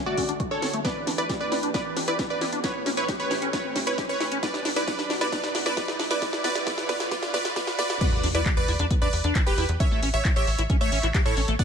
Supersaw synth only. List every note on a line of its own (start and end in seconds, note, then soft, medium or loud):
0.06 0.34 F#4 medium
0.06 0.34 D5 loud
0.51 0.72 A4 medium
0.51 0.72 C#5 medium
0.85 1.06 B4 medium
0.85 1.06 D5 medium
1.18 1.32 B4 medium
1.18 1.32 D5 medium
1.41 1.69 B4 medium
1.41 1.69 D5 medium
1.74 1.95 B4 medium
1.74 1.95 D5 medium
2.08 2.22 B4 medium
2.08 2.22 D5 medium
2.30 2.58 B4 medium
2.30 2.58 D5 medium
2.64 2.85 B4 medium
2.64 2.85 C#5 loud
2.97 3.11 B4 medium
2.97 3.11 C#5 medium
3.20 3.48 B4 medium
3.20 3.48 C#5 medium
3.53 3.74 B4 medium
3.53 3.74 C#5 medium
3.87 4.01 B4 medium
3.87 4.01 C#5 medium
4.09 4.37 B4 medium
4.09 4.37 C#5 medium
4.43 4.64 B4 medium
4.43 4.64 D5 loud
4.76 4.86 B4 medium
4.76 4.86 D5 medium
4.88 5.09 B4 medium
4.88 5.09 D5 loud
5.21 5.31 B4 medium
5.21 5.31 D5 medium
5.32 5.53 B4 medium
5.32 5.53 D5 loud
5.66 5.75 B4 medium
5.66 5.75 D5 medium
5.77 5.98 B4 medium
5.77 5.98 D5 loud
6.11 6.20 B4 medium
6.11 6.20 D5 medium
6.22 6.43 B4 medium
6.22 6.43 D5 loud
6.44 6.65 B4 medium
6.44 6.65 D5 loud
6.67 6.87 B4 medium
6.67 6.87 D5 loud
6.89 7.10 B4 medium
6.89 7.10 D5 loud
7.11 7.32 B4 medium
7.11 7.32 D5 loud
7.34 7.54 B4 medium
7.34 7.54 D5 loud
7.56 7.77 B4 medium
7.56 7.77 D5 loud
7.79 7.99 B4 medium
7.79 7.99 D5 loud
8.01 8.22 B4 medium
8.01 8.22 D5 loud
8.35 8.49 B4 medium
8.35 8.49 D5 medium
8.57 8.85 B4 medium
8.57 8.85 D5 loud
9.02 9.30 B4 medium
9.02 9.30 D5 medium
9.47 9.68 G4 medium
9.47 9.68 B4 loud
9.80 10.01 C#5 medium
9.80 10.01 E5 loud
10.14 10.28 C#5 medium
10.14 10.28 E5 medium
10.36 10.64 C#5 medium
10.36 10.64 E5 loud
10.81 11.09 C#5 medium
10.81 11.09 E5 loud
11.26 11.47 A4 medium
11.26 11.47 C#5 medium
11.59 11.64 D5 medium
11.59 11.64 F#5 loud